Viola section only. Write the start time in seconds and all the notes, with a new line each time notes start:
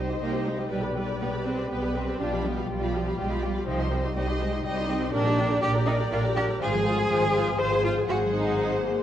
0.09 D#4 G4
0.21 D#4 G4
0.33 D#4 G4
0.45 D#4 G4
0.58 D#4 G4
0.71 G4 B4
0.83 G4 B4
0.96 G4 B4
1.09 G4 B4
1.21 G4 B4
1.33 G4 B4
1.46 G4 B4
1.58 G4 B4
1.69 G4 B4
1.82 G4 B4
1.94 G4 B4
2.06 G4 B4
2.19 F4 G4
2.31 F4 G4
2.43 F4 G4
2.56 F4 G4
2.68 F4 G4
2.80 F4 G4
2.93 F4 G4
3.06 F4 G4
3.18 F4 G4
3.32 F4 G4
3.43 F4 G4
3.55 F4 G4
3.67 D#4 G4
3.79 D#4 G4
3.91 D#4 G4
4.03 D#4 G4
4.16 D#4 G4
4.27 D#4 G4
4.39 D#4 G4
4.53 D#4 G4
4.64 D#4 G4
4.76 D#4 G4
4.89 D#4 G4
5.01 D#4 G4
5.13 D4 A#4
5.25 G4
5.38 D4 A#4
5.50 G4
5.63 D4 A#4
5.75 G4
5.88 D4 A#4
6.00 G4
6.13 D4 A#4
6.24 G4
6.36 D4 A#4
6.48 G4
6.61 F4 C5
6.74 G#4
6.86 F4 C5
6.98 G#4
7.10 F4 C5
7.23 G#4
7.36 F4 C5
7.48 G#4
7.60 F4 C5
7.73 G#4
7.85 F4 C5
7.97 G#4
8.10 G#4 C5